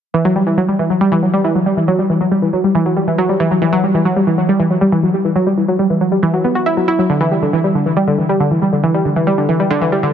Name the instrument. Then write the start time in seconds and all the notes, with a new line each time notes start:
synth pluck
0.14 E3
0.25 F#3
0.36 G3
0.47 E3
0.57 F#3
0.68 G3
0.79 E3
0.90 F#3
1.01 G3
1.12 E3
1.23 F#3
1.34 G3
1.44 E3
1.55 F#3
1.66 G3
1.77 E3
1.88 F#3
1.99 G3
2.10 E3
2.20 F#3
2.31 G3
2.42 E3
2.53 F#3
2.64 G3
2.75 E3
2.86 F#3
2.97 G3
3.07 E3
3.18 F#3
3.29 G3
3.40 E3
3.51 F#3
3.62 E3
3.73 F#3
3.83 G3
3.94 E3
4.05 F#3
4.16 G3
4.27 E3
4.38 F#3
4.49 G3
4.60 E3
4.70 F#3
4.81 G3
4.92 E3
5.03 F#3
5.14 G3
5.25 E3
5.36 F#3
5.47 G3
5.57 E3
5.68 F#3
5.79 G3
5.90 E3
6.01 F#3
6.12 G3
6.23 E3
6.34 F#3
6.44 B3
6.55 F#4
6.66 E4
6.77 F#3
6.88 E4
6.99 F#3
7.10 D3
7.21 E3
7.31 G3
7.42 D3
7.53 E3
7.64 G3
7.75 D3
7.86 E3
7.97 G3
8.07 D3
8.18 E3
8.29 G3
8.40 D3
8.51 E3
8.62 G3
8.73 D3
8.83 E3
8.94 G3
9.05 D3
9.16 E3
9.27 G3
9.38 D3
9.49 E3
9.60 G3
9.71 D3
9.81 E3
9.92 G3
10.03 D3